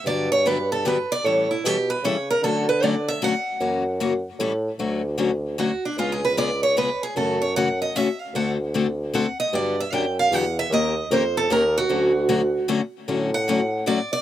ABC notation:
X:1
M:3/4
L:1/8
Q:"Swing" 1/4=152
K:Amix
V:1 name="Steel-string acoustic guitar"
d c B A B d | c E G B c ^A | A B d e f2- | f4 z2 |
[K:D] z4 F D | (3^E ^G B d c B G | A c f _e =e =f | f z3 f _e |
d e g =f ^f e | _e2 =c A _B F- | F4 z2 | z f3 d d |]
V:2 name="Steel-string acoustic guitar"
[D,F,B,DG] z [D,F,B,DG] z [D,F,B,DG] z | [E,G,CEA] z [E,G,CEA] z [E,G,CEA] z | [D,F,A,CF] z [D,F,A,CF] z [D,F,A,CF] z | [C,E,^A,CF] z [C,E,A,CF] z [E,G,CE=A] z |
[K:D] [D,F,A,CF] z [D,F,A,CF] z [D,F,A,CF] z | [C,^G,B,^E^G] z [C,G,B,EG] z [C,G,B,EG] z | [C,E,A,CF] z [C,E,A,CF] z [C,E,A,CF] z | [D,A,=CFA] z [D,A,CFA] z [D,A,CFA] z |
[D,F,B,DG] z [D,F,B,DG] z [D,F,B,DG] z | [_E,_B,_DG_B] z [E,B,DGB] z [E,B,DGB] z | [D,F,A,CF] z [D,F,A,CF] z [D,F,A,CF] z | [D,F,A,CF] z [D,F,A,CF] z [D,F,A,CF] z |]
V:3 name="Bassoon" clef=bass
G,,6 | A,,2 B,,2 C,2 | D,4- D, z | F,,4 A,,2 |
[K:D] D,,6 | C,,6 | F,,4- F,, z | D,,6 |
G,,2 F,,2 E,,2 | _E,,2 =F,,2 E,,2 | D,,4- D,, z | A,,6 |]